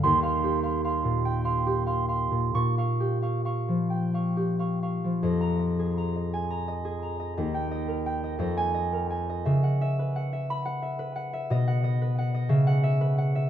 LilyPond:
<<
  \new Staff \with { instrumentName = "Harp" } { \time 6/8 \key ees \major \tempo 4. = 57 << { c'''2. | des'''2. | r16 bes''2~ bes''8.~ | bes''16 g''4. aes''4~ aes''16~ |
aes''4. ces'''4.~ | ces'''16 fis''4. ges''4~ ges''16 | } \\ { <g f''>16 <f'' c'''>16 g'16 <f'' c'''>16 <f'' c'''>16 bes,16 g''16 <f'' c'''>16 g'16 <f'' c'''>16 <f'' c'''>16 bes,16 | r16 <f'' des'''>16 g'16 <f'' des'''>16 <f'' des'''>16 f16 g''16 <f'' des'''>16 g'16 <f'' des'''>16 <f'' des'''>16 f16 | ees''8 ees''16 aes'16 bes''16 ees''16 aes''16 bes''16 ees''16 aes'16 bes''16 ees''16 | ees''8 ees''16 bes'16 g''16 ees''16 ees''8 ees''16 bes'16 aes''16 ees''16 |
fes''16 ges''16 fes''16 ces''16 ges''16 fes''8 ges''16 fes''16 ces''16 ges''16 fes''16 | dis''8 dis''16 b'16 fis''16 dis''16 fes''8 fes''16 ces''16 ges''16 fes''16 | } >> }
  \new Staff \with { instrumentName = "Harp" } { \clef bass \time 6/8 \key ees \major ees,2. | bes,2. | f,2. | ees,4. f,4. |
des2. | b,4. des4. | }
>>